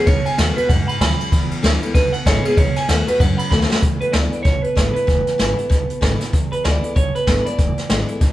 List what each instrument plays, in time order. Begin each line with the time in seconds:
0.06 upright bass B1, steel-string acoustic guitar B2, clean electric guitar C#5, kick, snare, ride
0.26 clean electric guitar G#5, muted upright bass stroke, ride
0.38 upright bass D#2, steel-string acoustic guitar D#3 A3 B3 F#4, clean electric guitar F#5, snare, ride
0.56 steel-string acoustic guitar B3 F#4, clean electric guitar B4, muted upright bass stroke, ride
0.69 upright bass F#2, steel-string acoustic guitar G#2, clean electric guitar F#5, kick, snare, ride
0.88 clean electric guitar B5, muted upright bass stroke, ride
1.01 upright bass D#2, steel-string acoustic guitar F#2, clean electric guitar B5, kick, snare, ride
1.19 muted upright bass stroke, ride
1.32 upright bass E1, steel-string acoustic guitar E2, kick, snare, ride
1.51 upright bass B1, ride
1.63 upright bass D2, steel-string acoustic guitar D3 G#3 B3 E4, snare, ride
1.82 steel-string acoustic guitar B3 E4, ride
1.94 upright bass B1, steel-string acoustic guitar B2, clean electric guitar B4, kick, snare, ride
2.12 clean electric guitar F#5, muted upright bass stroke, ride
2.26 upright bass G#1, steel-string acoustic guitar D3 G#3 B3 E4, clean electric guitar C#5, kick, snare, ride
2.45 steel-string acoustic guitar B3 E4, clean electric guitar G#4, ride
2.57 upright bass B1, steel-string acoustic guitar B2, clean electric guitar C#5, kick, ride
2.76 clean electric guitar G#5, muted upright bass stroke, snare, ride
2.88 upright bass D#2, steel-string acoustic guitar D#3 A3 B3 F#4, clean electric guitar F#5, snare, ride
3.07 steel-string acoustic guitar B3 F#4, clean electric guitar B4, muted upright bass stroke, ride
3.20 upright bass F#2, steel-string acoustic guitar F#2, clean electric guitar F#5, kick, snare, ride
3.38 clean electric guitar B5, muted upright bass stroke, ride
3.51 upright bass D#2, steel-string acoustic guitar D#3 A3 B3 F#4, clean electric guitar B5, kick, snare
3.62 snare
3.70 steel-string acoustic guitar B3 F#4, snare
3.82 upright bass E1, steel-string acoustic guitar E2, kick, closed hi-hat
4.01 upright bass B1, clean electric guitar B4, closed hi-hat
4.12 upright bass D2, steel-string acoustic guitar D3 G#3 B3 E4, clean electric guitar D5, snare, closed hi-hat
4.32 steel-string acoustic guitar B3 E4, muted upright bass stroke, closed hi-hat
4.43 upright bass B1, steel-string acoustic guitar B2, clean electric guitar C#5, kick, snare, closed hi-hat
4.62 clean electric guitar B4, muted upright bass stroke, closed hi-hat
4.75 upright bass G#1, steel-string acoustic guitar D3 G#3 B3 E4, kick, snare, closed hi-hat
4.94 steel-string acoustic guitar B3 E4, clean electric guitar B4, closed hi-hat
5.07 upright bass E1, steel-string acoustic guitar E2, kick, snare, closed hi-hat
5.27 muted upright bass stroke, snare, closed hi-hat
5.38 upright bass G#1, steel-string acoustic guitar D3 G#3 B3 E4, snare, closed hi-hat
5.57 steel-string acoustic guitar B3 E4, muted upright bass stroke, closed hi-hat
5.70 upright bass B1, steel-string acoustic guitar B2, kick, snare, closed hi-hat
5.89 muted upright bass stroke, closed hi-hat
6.01 upright bass G#1, steel-string acoustic guitar D3 G#3 B3 E4, kick, snare, closed hi-hat
6.20 steel-string acoustic guitar B3 E4, snare, closed hi-hat
6.33 upright bass E1, steel-string acoustic guitar E2, kick, snare, closed hi-hat
6.52 upright bass B1, clean electric guitar B4, closed hi-hat
6.64 upright bass D2, steel-string acoustic guitar D3 G#3 B3 E4, clean electric guitar D5, snare, closed hi-hat
6.83 steel-string acoustic guitar B3 E4, closed hi-hat
6.96 upright bass B1, steel-string acoustic guitar B2, clean electric guitar C#5, kick, closed hi-hat
7.15 clean electric guitar B4, muted upright bass stroke, closed hi-hat
7.27 upright bass G#1, steel-string acoustic guitar D3 G#3 B3 E4, kick, snare, closed hi-hat
7.46 steel-string acoustic guitar B3 E4, clean electric guitar D5, closed hi-hat
7.58 upright bass E1, steel-string acoustic guitar E2, kick, snare, closed hi-hat
7.78 muted upright bass stroke, snare, closed hi-hat
7.89 upright bass G#1, steel-string acoustic guitar D3 G#3 B3 E4, snare, closed hi-hat
8.08 steel-string acoustic guitar B3 E4, muted upright bass stroke, closed hi-hat
8.21 upright bass B1, steel-string acoustic guitar B2, kick, snare, closed hi-hat